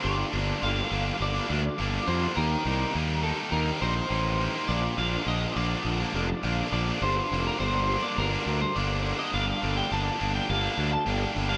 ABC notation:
X:1
M:4/4
L:1/16
Q:1/4=104
K:Gm
V:1 name="Clean electric guitar"
d4 f4 d6 c2 | B6 A2 B2 c6 | d2 f2 e2 d6 z2 d2 | c3 B c3 d B3 c d3 e |
f3 g a3 g f3 a g3 f |]
V:2 name="Distorted electric guitar" clef=bass
[G,,D,G,B,D]2 [D,G,B,D]2 [G,,D,G,B,D]2 [D,G,B,D]3 [G,B,D] [D,G,B,D]2 [G,,D,G,B,D]2 [D,G,B,D] [G,B,D] | [E,G,B,E]2 [E,G,B,E]2 [E,G,B,E]2 [E,G,B,E]3 [G,B,E] [E,G,B,E]2 [E,G,B,E]2 [E,G,B,E] [G,B,E] | [B,,D,F,B,D]2 [D,F,B,D]2 [B,,D,F,B,D]2 [D,F,B,D]3 [F,B,D] [D,F,B,D]2 [B,,D,F,B,D]2 [D,F,B,D] [F,B,D] | [G,,D,G,B,D]2 [D,G,B,D]2 [G,,D,G,B,D]2 [D,G,B,D]3 [G,B,D] [D,G,B,D]2 [G,,D,G,B,D]2 [D,G,B,D] [G,B,D] |
[G,,D,G,B,D]2 [D,G,B,D]2 [G,,D,G,B,D]2 [D,G,B,D]3 [G,B,D] [D,G,B,D]2 [G,,D,G,B,D]2 [D,G,B,D] [G,B,D] |]
V:3 name="Fingered electric bass" clef=bass
G,,,2 G,,,2 G,,,2 G,,,2 G,,,2 D,,2 G,,,2 F,,2 | E,,2 C,,2 E,,4 E,,2 B,,,2 A,,,4 | B,,,2 B,,,2 B,,,2 B,,,2 B,,,2 F,,,2 B,,,2 B,,,2 | G,,,2 F,,,2 G,,,4 G,,,2 D,,2 G,,,4 |
G,,,2 G,,,2 G,,,2 G,,,2 G,,,2 D,,2 G,,,2 G,,,2 |]